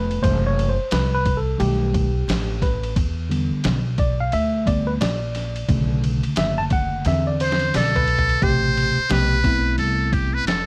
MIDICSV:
0, 0, Header, 1, 6, 480
1, 0, Start_track
1, 0, Key_signature, 0, "minor"
1, 0, Tempo, 681818
1, 163, Time_signature, 4, 2, 24, 8
1, 7505, End_track
2, 0, Start_track
2, 0, Title_t, "Muted trumpet"
2, 0, Program_c, 0, 59
2, 5230, Note_on_c, 0, 72, 92
2, 5469, Note_on_c, 0, 69, 102
2, 5480, Note_off_c, 0, 72, 0
2, 5937, Note_on_c, 0, 72, 107
2, 5947, Note_off_c, 0, 69, 0
2, 6423, Note_on_c, 0, 71, 100
2, 6433, Note_off_c, 0, 72, 0
2, 6886, Note_off_c, 0, 71, 0
2, 6890, Note_on_c, 0, 69, 88
2, 7134, Note_on_c, 0, 67, 78
2, 7145, Note_off_c, 0, 69, 0
2, 7278, Note_on_c, 0, 71, 91
2, 7288, Note_off_c, 0, 67, 0
2, 7368, Note_off_c, 0, 71, 0
2, 7372, Note_on_c, 0, 69, 85
2, 7505, Note_off_c, 0, 69, 0
2, 7505, End_track
3, 0, Start_track
3, 0, Title_t, "Tine electric piano"
3, 0, Program_c, 1, 4
3, 0, Note_on_c, 1, 48, 57
3, 0, Note_on_c, 1, 55, 55
3, 0, Note_on_c, 1, 59, 64
3, 0, Note_on_c, 1, 71, 90
3, 136, Note_off_c, 1, 48, 0
3, 137, Note_off_c, 1, 55, 0
3, 140, Note_off_c, 1, 59, 0
3, 153, Note_on_c, 1, 48, 54
3, 160, Note_on_c, 1, 52, 53
3, 160, Note_on_c, 1, 57, 68
3, 160, Note_on_c, 1, 72, 109
3, 171, Note_off_c, 1, 71, 0
3, 310, Note_off_c, 1, 72, 0
3, 328, Note_on_c, 1, 73, 99
3, 487, Note_on_c, 1, 72, 90
3, 490, Note_off_c, 1, 73, 0
3, 497, Note_off_c, 1, 48, 0
3, 500, Note_off_c, 1, 52, 0
3, 500, Note_off_c, 1, 57, 0
3, 648, Note_on_c, 1, 71, 91
3, 650, Note_off_c, 1, 72, 0
3, 798, Note_off_c, 1, 71, 0
3, 806, Note_on_c, 1, 71, 97
3, 965, Note_on_c, 1, 69, 86
3, 970, Note_off_c, 1, 71, 0
3, 1113, Note_off_c, 1, 69, 0
3, 1113, Note_on_c, 1, 51, 55
3, 1120, Note_on_c, 1, 55, 54
3, 1125, Note_on_c, 1, 57, 66
3, 1125, Note_on_c, 1, 67, 87
3, 1457, Note_off_c, 1, 51, 0
3, 1461, Note_off_c, 1, 55, 0
3, 1463, Note_off_c, 1, 57, 0
3, 1847, Note_on_c, 1, 71, 75
3, 1866, Note_off_c, 1, 67, 0
3, 2069, Note_off_c, 1, 71, 0
3, 2318, Note_on_c, 1, 50, 59
3, 2322, Note_on_c, 1, 55, 53
3, 2330, Note_on_c, 1, 59, 61
3, 2659, Note_off_c, 1, 50, 0
3, 2661, Note_off_c, 1, 55, 0
3, 2665, Note_off_c, 1, 59, 0
3, 2812, Note_on_c, 1, 74, 99
3, 2943, Note_off_c, 1, 74, 0
3, 2960, Note_on_c, 1, 77, 106
3, 3043, Note_off_c, 1, 77, 0
3, 3051, Note_on_c, 1, 76, 103
3, 3278, Note_on_c, 1, 50, 47
3, 3281, Note_on_c, 1, 55, 49
3, 3285, Note_on_c, 1, 59, 55
3, 3289, Note_on_c, 1, 74, 90
3, 3294, Note_off_c, 1, 76, 0
3, 3422, Note_off_c, 1, 74, 0
3, 3428, Note_on_c, 1, 71, 85
3, 3471, Note_off_c, 1, 71, 0
3, 3497, Note_off_c, 1, 50, 0
3, 3498, Note_off_c, 1, 55, 0
3, 3500, Note_off_c, 1, 59, 0
3, 3527, Note_on_c, 1, 74, 90
3, 4003, Note_on_c, 1, 50, 60
3, 4007, Note_on_c, 1, 57, 57
3, 4013, Note_on_c, 1, 49, 70
3, 4217, Note_off_c, 1, 74, 0
3, 4490, Note_on_c, 1, 76, 98
3, 4632, Note_on_c, 1, 81, 110
3, 4637, Note_off_c, 1, 76, 0
3, 4674, Note_off_c, 1, 81, 0
3, 4735, Note_on_c, 1, 78, 110
3, 4935, Note_off_c, 1, 50, 0
3, 4937, Note_off_c, 1, 57, 0
3, 4940, Note_off_c, 1, 49, 0
3, 4953, Note_off_c, 1, 78, 0
3, 4976, Note_on_c, 1, 50, 62
3, 4979, Note_on_c, 1, 60, 67
3, 4980, Note_on_c, 1, 52, 59
3, 4980, Note_on_c, 1, 76, 99
3, 5119, Note_on_c, 1, 74, 90
3, 5122, Note_off_c, 1, 76, 0
3, 5202, Note_off_c, 1, 74, 0
3, 5217, Note_on_c, 1, 72, 93
3, 5457, Note_off_c, 1, 72, 0
3, 5462, Note_on_c, 1, 74, 101
3, 5600, Note_on_c, 1, 71, 70
3, 5602, Note_off_c, 1, 74, 0
3, 5661, Note_off_c, 1, 50, 0
3, 5663, Note_off_c, 1, 52, 0
3, 5663, Note_off_c, 1, 60, 0
3, 5906, Note_off_c, 1, 71, 0
3, 5924, Note_on_c, 1, 48, 71
3, 5928, Note_on_c, 1, 57, 66
3, 5936, Note_on_c, 1, 47, 71
3, 5937, Note_on_c, 1, 67, 86
3, 6315, Note_off_c, 1, 48, 0
3, 6317, Note_off_c, 1, 57, 0
3, 6321, Note_off_c, 1, 47, 0
3, 6321, Note_off_c, 1, 67, 0
3, 6400, Note_on_c, 1, 48, 64
3, 6408, Note_on_c, 1, 57, 67
3, 6413, Note_on_c, 1, 59, 61
3, 6419, Note_on_c, 1, 67, 76
3, 6597, Note_off_c, 1, 48, 0
3, 6601, Note_off_c, 1, 57, 0
3, 6604, Note_off_c, 1, 59, 0
3, 6607, Note_off_c, 1, 67, 0
3, 6643, Note_on_c, 1, 60, 75
3, 6648, Note_on_c, 1, 57, 63
3, 6653, Note_on_c, 1, 59, 72
3, 6661, Note_on_c, 1, 64, 80
3, 7381, Note_off_c, 1, 60, 0
3, 7383, Note_off_c, 1, 57, 0
3, 7386, Note_off_c, 1, 59, 0
3, 7390, Note_off_c, 1, 64, 0
3, 7505, End_track
4, 0, Start_track
4, 0, Title_t, "Upright bass"
4, 0, Program_c, 2, 32
4, 0, Note_on_c, 2, 29, 91
4, 140, Note_off_c, 2, 29, 0
4, 168, Note_on_c, 2, 30, 99
4, 532, Note_off_c, 2, 30, 0
4, 645, Note_on_c, 2, 36, 84
4, 1100, Note_off_c, 2, 36, 0
4, 1127, Note_on_c, 2, 35, 112
4, 1581, Note_off_c, 2, 35, 0
4, 1604, Note_on_c, 2, 33, 94
4, 2060, Note_off_c, 2, 33, 0
4, 2086, Note_on_c, 2, 40, 103
4, 2451, Note_off_c, 2, 40, 0
4, 2567, Note_on_c, 2, 35, 89
4, 3021, Note_off_c, 2, 35, 0
4, 3049, Note_on_c, 2, 38, 99
4, 3502, Note_off_c, 2, 38, 0
4, 3525, Note_on_c, 2, 34, 92
4, 3980, Note_off_c, 2, 34, 0
4, 4004, Note_on_c, 2, 35, 98
4, 4370, Note_off_c, 2, 35, 0
4, 4485, Note_on_c, 2, 30, 89
4, 4940, Note_off_c, 2, 30, 0
4, 4967, Note_on_c, 2, 40, 110
4, 5421, Note_off_c, 2, 40, 0
4, 5451, Note_on_c, 2, 35, 95
4, 5903, Note_off_c, 2, 35, 0
4, 5927, Note_on_c, 2, 33, 87
4, 6292, Note_off_c, 2, 33, 0
4, 6411, Note_on_c, 2, 35, 85
4, 6863, Note_off_c, 2, 35, 0
4, 6887, Note_on_c, 2, 36, 85
4, 7368, Note_off_c, 2, 36, 0
4, 7368, Note_on_c, 2, 29, 96
4, 7505, Note_off_c, 2, 29, 0
4, 7505, End_track
5, 0, Start_track
5, 0, Title_t, "Muted upright bass strokes"
5, 550, Note_on_c, 9, 29, 48
5, 621, Note_off_c, 9, 29, 0
5, 2472, Note_on_c, 9, 29, 45
5, 2542, Note_off_c, 9, 29, 0
5, 4385, Note_on_c, 9, 29, 50
5, 4455, Note_off_c, 9, 29, 0
5, 6318, Note_on_c, 9, 29, 43
5, 6389, Note_off_c, 9, 29, 0
5, 7505, End_track
6, 0, Start_track
6, 0, Title_t, "Drums"
6, 76, Note_on_c, 9, 51, 44
6, 146, Note_off_c, 9, 51, 0
6, 166, Note_on_c, 9, 36, 97
6, 167, Note_on_c, 9, 51, 69
6, 237, Note_off_c, 9, 36, 0
6, 238, Note_off_c, 9, 51, 0
6, 416, Note_on_c, 9, 51, 58
6, 486, Note_off_c, 9, 51, 0
6, 641, Note_on_c, 9, 44, 56
6, 641, Note_on_c, 9, 51, 80
6, 650, Note_on_c, 9, 38, 123
6, 712, Note_off_c, 9, 44, 0
6, 712, Note_off_c, 9, 51, 0
6, 720, Note_off_c, 9, 38, 0
6, 884, Note_on_c, 9, 51, 61
6, 885, Note_on_c, 9, 36, 102
6, 954, Note_off_c, 9, 51, 0
6, 955, Note_off_c, 9, 36, 0
6, 1125, Note_on_c, 9, 51, 64
6, 1196, Note_off_c, 9, 51, 0
6, 1368, Note_on_c, 9, 36, 92
6, 1369, Note_on_c, 9, 51, 64
6, 1439, Note_off_c, 9, 36, 0
6, 1439, Note_off_c, 9, 51, 0
6, 1611, Note_on_c, 9, 44, 61
6, 1611, Note_on_c, 9, 51, 87
6, 1618, Note_on_c, 9, 38, 122
6, 1681, Note_off_c, 9, 44, 0
6, 1681, Note_off_c, 9, 51, 0
6, 1688, Note_off_c, 9, 38, 0
6, 1844, Note_on_c, 9, 36, 97
6, 1847, Note_on_c, 9, 51, 52
6, 1854, Note_on_c, 9, 38, 38
6, 1914, Note_off_c, 9, 36, 0
6, 1917, Note_off_c, 9, 51, 0
6, 1924, Note_off_c, 9, 38, 0
6, 1995, Note_on_c, 9, 51, 48
6, 2066, Note_off_c, 9, 51, 0
6, 2085, Note_on_c, 9, 36, 102
6, 2085, Note_on_c, 9, 51, 73
6, 2156, Note_off_c, 9, 36, 0
6, 2156, Note_off_c, 9, 51, 0
6, 2333, Note_on_c, 9, 51, 61
6, 2403, Note_off_c, 9, 51, 0
6, 2561, Note_on_c, 9, 44, 54
6, 2561, Note_on_c, 9, 51, 80
6, 2569, Note_on_c, 9, 38, 127
6, 2631, Note_off_c, 9, 44, 0
6, 2631, Note_off_c, 9, 51, 0
6, 2640, Note_off_c, 9, 38, 0
6, 2802, Note_on_c, 9, 51, 56
6, 2803, Note_on_c, 9, 36, 103
6, 2872, Note_off_c, 9, 51, 0
6, 2874, Note_off_c, 9, 36, 0
6, 3043, Note_on_c, 9, 51, 61
6, 3113, Note_off_c, 9, 51, 0
6, 3287, Note_on_c, 9, 36, 92
6, 3289, Note_on_c, 9, 51, 63
6, 3357, Note_off_c, 9, 36, 0
6, 3359, Note_off_c, 9, 51, 0
6, 3526, Note_on_c, 9, 44, 66
6, 3526, Note_on_c, 9, 51, 93
6, 3533, Note_on_c, 9, 38, 117
6, 3596, Note_off_c, 9, 44, 0
6, 3596, Note_off_c, 9, 51, 0
6, 3603, Note_off_c, 9, 38, 0
6, 3764, Note_on_c, 9, 51, 60
6, 3771, Note_on_c, 9, 38, 42
6, 3835, Note_off_c, 9, 51, 0
6, 3842, Note_off_c, 9, 38, 0
6, 3912, Note_on_c, 9, 51, 48
6, 3983, Note_off_c, 9, 51, 0
6, 4003, Note_on_c, 9, 36, 100
6, 4003, Note_on_c, 9, 51, 67
6, 4073, Note_off_c, 9, 36, 0
6, 4073, Note_off_c, 9, 51, 0
6, 4249, Note_on_c, 9, 51, 66
6, 4320, Note_off_c, 9, 51, 0
6, 4389, Note_on_c, 9, 51, 49
6, 4459, Note_off_c, 9, 51, 0
6, 4477, Note_on_c, 9, 44, 57
6, 4477, Note_on_c, 9, 51, 83
6, 4485, Note_on_c, 9, 38, 122
6, 4547, Note_off_c, 9, 44, 0
6, 4547, Note_off_c, 9, 51, 0
6, 4556, Note_off_c, 9, 38, 0
6, 4719, Note_on_c, 9, 51, 60
6, 4722, Note_on_c, 9, 36, 108
6, 4789, Note_off_c, 9, 51, 0
6, 4793, Note_off_c, 9, 36, 0
6, 4961, Note_on_c, 9, 51, 69
6, 4971, Note_on_c, 9, 38, 54
6, 5031, Note_off_c, 9, 51, 0
6, 5041, Note_off_c, 9, 38, 0
6, 5210, Note_on_c, 9, 51, 66
6, 5281, Note_off_c, 9, 51, 0
6, 5295, Note_on_c, 9, 38, 83
6, 5346, Note_on_c, 9, 51, 48
6, 5365, Note_off_c, 9, 38, 0
6, 5416, Note_off_c, 9, 51, 0
6, 5449, Note_on_c, 9, 44, 65
6, 5449, Note_on_c, 9, 51, 85
6, 5453, Note_on_c, 9, 38, 84
6, 5520, Note_off_c, 9, 44, 0
6, 5520, Note_off_c, 9, 51, 0
6, 5524, Note_off_c, 9, 38, 0
6, 5605, Note_on_c, 9, 43, 106
6, 5675, Note_off_c, 9, 43, 0
6, 5686, Note_on_c, 9, 51, 54
6, 5756, Note_off_c, 9, 51, 0
6, 5763, Note_on_c, 9, 43, 100
6, 5833, Note_off_c, 9, 43, 0
6, 5837, Note_on_c, 9, 51, 45
6, 5907, Note_off_c, 9, 51, 0
6, 5927, Note_on_c, 9, 36, 89
6, 5929, Note_on_c, 9, 51, 67
6, 5997, Note_off_c, 9, 36, 0
6, 5999, Note_off_c, 9, 51, 0
6, 6176, Note_on_c, 9, 51, 58
6, 6247, Note_off_c, 9, 51, 0
6, 6402, Note_on_c, 9, 44, 52
6, 6402, Note_on_c, 9, 51, 76
6, 6411, Note_on_c, 9, 38, 113
6, 6473, Note_off_c, 9, 44, 0
6, 6473, Note_off_c, 9, 51, 0
6, 6481, Note_off_c, 9, 38, 0
6, 6645, Note_on_c, 9, 36, 101
6, 6645, Note_on_c, 9, 51, 54
6, 6716, Note_off_c, 9, 36, 0
6, 6716, Note_off_c, 9, 51, 0
6, 6884, Note_on_c, 9, 51, 62
6, 6955, Note_off_c, 9, 51, 0
6, 7129, Note_on_c, 9, 36, 89
6, 7130, Note_on_c, 9, 51, 59
6, 7199, Note_off_c, 9, 36, 0
6, 7200, Note_off_c, 9, 51, 0
6, 7372, Note_on_c, 9, 44, 56
6, 7372, Note_on_c, 9, 51, 79
6, 7379, Note_on_c, 9, 38, 107
6, 7443, Note_off_c, 9, 44, 0
6, 7443, Note_off_c, 9, 51, 0
6, 7449, Note_off_c, 9, 38, 0
6, 7505, End_track
0, 0, End_of_file